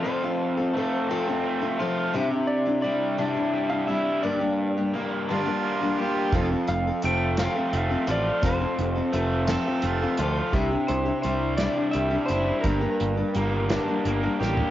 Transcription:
<<
  \new Staff \with { instrumentName = "Electric slide guitar" } { \time 6/8 \key f \major \tempo 4. = 57 c''2 r4 | r8 d''8 d''4~ d''16 f''16 e''8 | d''2 r4 | r8 f''8 g''8 f''8 f''8 d''8 |
c''4 r2 | r8 c''8 c''8 d''8 e''8 c''8 | bes'2~ bes'8 r8 | }
  \new Staff \with { instrumentName = "Harmonica" } { \time 6/8 \key f \major r2. | r2. | r4. f'4 f'8~ | f'16 r2 r8. |
r4. a'8 f'8 r8 | r2. | r2. | }
  \new Staff \with { instrumentName = "Steel-string acoustic guitar" } { \time 6/8 \key f \major <f c' f' a'>16 <c' f' a'>8 <c' f' a'>16 <f c' f' a'>8 <f c' f' a'>16 <c' f' a'>8 <c' f' a'>16 <f c' f' a'>8 | <c g d' e' g'>16 <d' e' g'>8 <d' e' g'>16 <g d' e' g'>8 <c g d' e' g'>16 <d' e' g'>8 <d' e' g'>16 <g d' e' g'>8 | <g, d g bes d' g'>16 <g bes d' g'>8 <g bes d' g'>16 <g bes d' g'>8 <g, d g bes d' g'>16 <g bes d' g'>8 <g bes d' g'>16 <g bes d' g'>8 | <f c' f' a'>16 <c' f' a'>8 <c' f' a'>16 <f c' f' a'>8 <f c' f' a'>16 <c' f' a'>8 <c' f' a'>16 <f c' f' a'>8 |
<f c' f' a'>16 <c' f' a'>8 <c' f' a'>16 <f c' f' a'>8 <f c' f' a'>16 <c' f' a'>8 <c' f' a'>16 <f c' f' a'>8 | <c g d' e' g'>16 <d' e' g'>8 <d' e' g'>16 <g d' e' g'>8 <c g d' e' g'>16 <d' e' g'>8 <d' e' g'>16 <g d' e' g'>8 | <g, d g bes d' g'>16 <g bes d' g'>8 <g bes d' g'>16 <g bes d' g'>8 <g, d g bes d' g'>16 <g bes d' g'>8 <g bes d' g'>16 <g bes d' g'>8 | }
  \new Staff \with { instrumentName = "Overdriven electric guitar" } { \time 6/8 \key f \major <f, a c' f'>4 a8 c'8 a8 f'8 | c4 g8 d'8 g8 e'8 | g,4 bes8 d'8 bes8 g'8 | f,4 a8 c'8 a8 f'8 |
f,4 a8 c'8 a8 f'8 | c4 g8 d'8 g8 e'8 | g,4 bes8 d'8 bes8 g'8 | }
  \new Staff \with { instrumentName = "Picked electric bass" } { \clef bass \time 6/8 \key f \major r2. | r2. | r2. | f,,8 f,,8 f,,4 f,,8 a,,8 |
f,,8 f,,8 f,,4 f,,8 d,8 | c,8 c,8 c,4 c,8 ges,,8 | g,,8 g,,8 g,,4 g,,8 a,,8 | }
  \new DrumStaff \with { instrumentName = "Drums" } \drummode { \time 6/8 r4. r4. | r4. r4. | r4. r4. | <hh bd>8 hh8 hh8 <hh sn>8 hh8 hh8 |
<hh bd>8 hh8 hh8 <hh sn>8 hh8 hh8 | <hh bd>8 hh8 hh8 <hh sn>8 hh8 hh8 | <hh bd>8 hh8 hh8 <hh sn>8 hh8 sn16 tomfh16 | }
>>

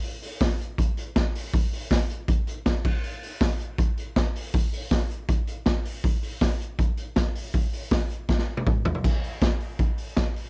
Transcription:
\new DrumStaff \with { instrumentName = "Drums" } \drummode { \time 4/4 \tempo 4 = 160 <hho hhp>8 <hho hhp>8 <hho hhp bd sn>8 <hho hhp>8 <hho hhp bd>8 <hho hhp>8 <hho hhp bd sn>8 <hho hhp>8 | <hho hhp bd>8 <hho hhp>8 <hho hhp bd sn>8 <hho hhp>8 <hho hhp bd>8 <hho hhp>8 <hho hhp bd sn>8 <cymc bd>8 | <hho hhp>8 <hho hhp>8 <hho hhp bd sn>8 <hho hhp>8 <hho hhp bd>8 <hho hhp>8 <hho hhp bd sn>8 <hho hhp>8 | <hho hhp bd>8 <hho hhp>8 <hho hhp bd sn>8 <hho hhp>8 <hho hhp bd>8 <hho hhp>8 <hho hhp bd sn>8 <hho hhp>8 |
<hho hhp bd>8 <hho hhp>8 <hho hhp bd sn>8 <hho hhp>8 <hho hhp bd>8 <hho hhp>8 <hho hhp bd sn>8 <hho hhp>8 | <hho hhp bd>8 <hho hhp>8 <hho hhp bd sn>8 <hho hhp>8 <bd sn>16 sn8 tommh16 <bd toml>8 tomfh16 tomfh16 | <cymc bd>8 hho8 <hh bd sn>8 hho8 <hh bd>8 hho8 <hh bd sn>8 hho8 | }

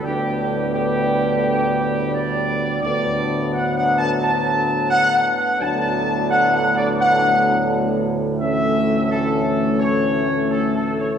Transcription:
<<
  \new Staff \with { instrumentName = "Trumpet section" } { \time 4/4 \key b \minor \tempo 4 = 86 g'4 g'2 d''4 | d''4 \tuplet 3/2 { fis''8 fis''8 a''8 } a''4 \tuplet 3/2 { fis''8 fis''8 fis''8 } | a''4 \tuplet 3/2 { fis''8 fis''8 d''8 } fis''4 r4 | e''4 a'4 cis''4 \tuplet 3/2 { a'8 a'8 cis''8 } | }
  \new Staff \with { instrumentName = "French horn section" } { \time 4/4 \key b \minor <b d'>1 | <b d'>1 | <b d'>1 | <a cis'>1 | }
  \new Staff \with { instrumentName = "Trombone section" } { \clef bass \time 4/4 \key b \minor << { g1~ | g4 fis2. | fis1 | e1 | } \\ { a,1 | a,1 | a,1~ | a,1 | } >> }
  \new Staff \with { instrumentName = "Tuba" } { \clef bass \time 4/4 \key b \minor d,1 | d,2.~ d,8 r8 | d,1~ | d,1 | }
>>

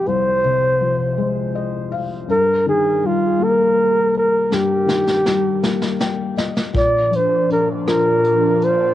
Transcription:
<<
  \new Staff \with { instrumentName = "Flugelhorn" } { \time 6/8 \key ees \major \tempo 4. = 54 c''2 r4 | bes'8 aes'8 f'8 bes'4 bes'8 | g'2 r4 | d''8 c''8 bes'8 bes'4 c''8 | }
  \new Staff \with { instrumentName = "Felt piano" } { \time 6/8 \key ees \major r2 ees''8 f''8 | r2. | r2 g''8 ees''8 | r2. | }
  \new Staff \with { instrumentName = "Felt piano" } { \clef bass \time 6/8 \key ees \major <c, aes>8 c8 f8 aes4. | g,8 ees8 g8 bes4. | g,8 ees8 g8 bes4. | bes,8 f8 d'8 f'4. | }
  \new Staff \with { instrumentName = "Analog synth pad" } { \clef bass \time 6/8 \key ees \major r2. | r2. | r2. | <bes, f d'>2. | }
  \new DrumStaff \with { instrumentName = "Drums" } \drummode { \time 6/8 r4. r4. | r4. r4. | sn8 sn16 sn16 sn8 sn16 sn16 sn8 sn16 sn16 | <hh bd>8 hh8 hh8 <hh ss>8 hh8 hh8 | }
>>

